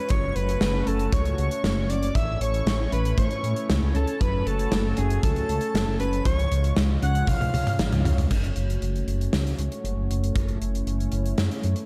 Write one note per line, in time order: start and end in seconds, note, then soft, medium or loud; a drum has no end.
0.00 8.27 C#4 medium
0.00 0.12 B4 loud
0.00 8.27 C#5 medium
0.00 0.12 B5 loud
0.09 0.31 F#1 loud
0.09 0.28 F#3 loud
0.09 2.13 A3 medium
0.09 2.13 F#4 medium
0.09 0.37 C#5 loud
0.09 0.37 C#6 loud
0.09 kick loud
0.09 closed hi-hat medium
0.36 0.57 F#1 loud
0.36 0.89 B4 loud
0.36 0.88 B5 loud
0.36 closed hi-hat medium
0.49 closed hi-hat medium
0.61 0.82 F#1 medium
0.61 0.80 A3 medium
0.61 snare loud
0.61 closed hi-hat medium
0.87 1.08 F#1 loud
0.87 1.11 C#4 medium
0.87 1.12 A4 medium
0.87 1.12 A5 medium
0.87 closed hi-hat medium
0.99 closed hi-hat medium
1.12 1.34 C#2 medium
1.12 1.24 F#3 medium
1.12 1.91 C#5 loud
1.12 1.91 C#6 loud
1.12 kick loud
1.12 closed hi-hat medium
1.25 closed hi-hat medium
1.38 1.49 C#2 medium
1.38 closed hi-hat medium
1.51 closed hi-hat medium
1.64 1.74 F#1 loud
1.64 1.88 A3 loud
1.64 snare loud
1.64 closed hi-hat medium
1.77 1.87 F#1 medium
1.89 2.11 F#1 medium
1.89 2.14 C#4 loud
1.89 2.17 D5 loud
1.89 2.17 D6 loud
1.89 closed hi-hat medium
2.03 closed hi-hat medium
2.15 2.36 A1 medium
2.15 2.34 E3 loud
2.15 4.18 A3 medium
2.15 4.18 E4 medium
2.15 2.41 E5 loud
2.15 2.41 E6 loud
2.15 kick loud
2.15 closed hi-hat medium
2.41 2.62 A1 medium
2.41 2.89 C#5 loud
2.41 2.89 C#6 loud
2.41 closed hi-hat medium
2.54 closed hi-hat medium
2.66 2.87 A1 medium
2.66 2.85 A3 medium
2.66 snare loud
2.66 closed hi-hat medium
2.92 3.13 A1 loud
2.92 3.17 C#4 medium
2.92 3.16 B4 medium
2.92 3.16 B5 medium
2.92 closed hi-hat medium
3.05 closed hi-hat medium
3.18 3.28 A2 medium
3.18 3.29 E3 medium
3.18 3.65 C#5 medium
3.18 3.64 C#6 medium
3.18 kick loud
3.18 closed hi-hat medium
3.31 closed hi-hat medium
3.43 3.54 A2 loud
3.43 closed hi-hat medium
3.56 closed hi-hat medium
3.69 3.80 C#2 medium
3.69 3.94 A3 loud
3.69 snare loud
3.69 closed hi-hat medium
3.82 3.93 C#2 medium
3.95 4.05 C#2 loud
3.95 4.19 C#4 loud
3.95 4.23 A4 medium
3.95 4.22 A5 medium
3.95 closed hi-hat medium
4.07 closed hi-hat medium
4.20 4.42 F#1 loud
4.20 4.39 F#3 loud
4.20 6.24 A3 medium
4.20 6.24 F#4 medium
4.20 4.48 B4 loud
4.20 4.48 B5 loud
4.20 kick loud
4.20 closed hi-hat medium
4.46 4.67 F#1 loud
4.46 4.99 A4 loud
4.46 4.99 A5 loud
4.46 closed hi-hat medium
4.59 closed hi-hat medium
4.72 4.93 F#1 loud
4.72 4.90 A3 medium
4.72 snare loud
4.72 closed hi-hat medium
4.97 5.18 F#1 loud
4.97 5.22 C#4 medium
4.97 5.23 G#4 medium
4.97 5.22 G#5 medium
4.97 closed hi-hat medium
5.10 closed hi-hat medium
5.23 5.44 C#2 medium
5.23 5.34 F#3 medium
5.23 5.96 A4 loud
5.23 5.96 A5 loud
5.23 kick loud
5.23 closed hi-hat medium
5.36 closed hi-hat medium
5.49 5.59 C#2 medium
5.49 closed hi-hat medium
5.61 closed hi-hat medium
5.74 5.85 F#1 loud
5.74 5.99 A3 loud
5.74 snare loud
5.74 closed hi-hat medium
5.87 5.98 F#1 medium
6.00 6.21 F#1 medium
6.00 6.24 C#4 loud
6.00 6.24 B4 loud
6.00 6.24 B5 loud
6.00 closed hi-hat medium
6.13 closed hi-hat medium
6.25 6.47 C#2 medium
6.25 6.44 F3 loud
6.25 8.29 G#3 medium
6.25 8.29 F4 medium
6.25 6.73 C#5 loud
6.25 6.73 C#6 loud
6.25 kick loud
6.25 closed hi-hat medium
6.39 closed hi-hat medium
6.51 6.72 C#2 medium
6.51 closed hi-hat medium
6.64 closed hi-hat medium
6.77 6.98 C#2 medium
6.77 6.95 G#3 medium
6.77 snare loud
6.77 closed hi-hat medium
7.02 7.24 C#2 loud
7.02 7.27 C#4 medium
7.02 7.30 F#5 loud
7.02 7.29 F#6 loud
7.02 closed hi-hat medium
7.15 closed hi-hat medium
7.27 7.49 C#2 loud
7.27 7.39 F3 medium
7.27 8.05 F5 loud
7.27 8.05 F6 loud
7.27 kick loud
7.27 closed hi-hat loud
7.27 high tom medium
7.41 closed hi-hat soft
7.41 high tom medium
7.54 7.64 C#2 medium
7.54 closed hi-hat medium
7.54 high tom medium
7.67 closed hi-hat medium
7.67 mid tom medium
7.79 7.90 G#1 medium
7.79 8.04 G#3 loud
7.79 snare loud
7.79 closed hi-hat medium
7.79 mid tom medium
7.92 8.03 C#2 medium
7.92 closed hi-hat medium
7.92 mid tom medium
8.05 8.26 C#2 loud
8.05 8.29 C#4 loud
8.05 closed hi-hat medium
8.05 mid tom loud
8.18 closed hi-hat medium
8.18 mid tom medium
8.31 8.52 F#1 loud
8.31 11.86 A3 medium
8.31 11.86 C#4 medium
8.31 10.34 F#4 medium
8.31 11.86 C#5 medium
8.31 kick loud
8.31 closed hi-hat medium
8.31 crash medium
8.44 closed hi-hat medium
8.56 8.77 F#1 loud
8.56 closed hi-hat medium
8.70 closed hi-hat medium
8.82 9.03 F#1 medium
8.82 closed hi-hat medium
8.96 closed hi-hat soft
9.07 9.29 F#1 loud
9.07 closed hi-hat medium
9.21 closed hi-hat medium
9.33 9.54 C#2 medium
9.33 snare loud
9.33 closed hi-hat medium
9.47 closed hi-hat medium
9.59 9.69 C#2 medium
9.59 closed hi-hat medium
9.72 closed hi-hat medium
9.84 9.95 F#1 loud
9.84 closed hi-hat medium
9.97 10.08 F#1 medium
10.10 10.31 F#1 medium
10.10 closed hi-hat medium
10.24 closed hi-hat medium
10.36 10.57 F#1 medium
10.36 11.86 E4 medium
10.36 kick loud
10.36 closed hi-hat medium
10.48 closed hi-hat soft
10.62 10.82 F#1 medium
10.62 closed hi-hat medium
10.75 closed hi-hat medium
10.87 11.08 F#1 medium
10.87 closed hi-hat medium
11.00 closed hi-hat soft
11.12 11.34 F#1 loud
11.12 closed hi-hat medium
11.26 closed hi-hat medium
11.38 11.49 F#2 medium
11.38 snare loud
11.38 closed hi-hat medium
11.51 closed hi-hat medium
11.63 11.75 F#2 loud
11.63 closed hi-hat medium
11.76 closed hi-hat medium